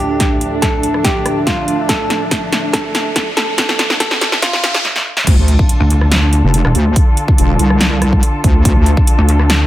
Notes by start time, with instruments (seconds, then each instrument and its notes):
Already playing: string section D2 A2 F3 D4, ambient pad D4 A4 E5, riser
0.00 clean electric guitar G4
0.20 kick, snare, closed hi-hat
0.41 closed hi-hat
0.62 clean electric guitar A4, kick, snare, closed hi-hat
0.83 closed hi-hat
0.94 cross-stick
1.04 clean electric guitar G4, kick, snare, closed hi-hat
1.26 cross-stick, closed hi-hat
1.47 clean electric guitar F4, kick, snare, closed hi-hat
1.68 closed hi-hat
1.89 clean electric guitar A4, kick, snare, closed hi-hat
2.10 snare, closed hi-hat
2.31 kick, snare, closed hi-hat
2.52 snare, closed hi-hat
2.73 clean electric guitar A4, kick, snare, closed hi-hat
2.95 snare, closed hi-hat
3.16 kick, snare, closed hi-hat
3.37 clean electric guitar A4, snare, closed hi-hat
3.58 kick, snare, closed hi-hat
3.69 snare
3.79 snare, closed hi-hat
3.90 snare
4.00 clean electric guitar A4, kick, snare, closed hi-hat
4.11 snare
4.21 snare, closed hi-hat
4.32 snare
4.42 clean electric guitar F4, kick, snare, closed hi-hat
4.53 snare
4.64 snare, closed hi-hat
4.75 snare
4.85 snare
4.96 snare
5.17 snare
5.27 wobble bass D2, string section D3 D4 F4 A4, kick, closed hi-hat, crash, impact
5.38 wobble bass D2
5.48 closed hi-hat
5.59 kick
5.69 closed hi-hat
5.80 wobble bass D2
5.90 closed hi-hat
6.01 cross-stick
6.12 snare, closed hi-hat
6.33 closed hi-hat
6.44 wobble bass F1
6.54 closed hi-hat
6.65 wobble bass E1, cross-stick
6.75 wobble bass D2, closed hi-hat
6.96 kick, closed hi-hat
7.17 closed hi-hat
7.28 kick
7.38 wobble bass E1, closed hi-hat
7.59 wobble bass C2, closed hi-hat
7.70 cross-stick
7.81 snare, closed hi-hat
8.02 cross-stick, closed hi-hat
8.13 kick
8.23 closed hi-hat
8.44 wobble bass D2, kick, closed hi-hat
8.65 wobble bass D2, kick, closed hi-hat
8.76 wobble bass D2
8.86 closed hi-hat
8.97 kick
9.07 closed hi-hat
9.18 wobble bass D2
9.29 closed hi-hat
9.39 cross-stick
9.50 snare, closed hi-hat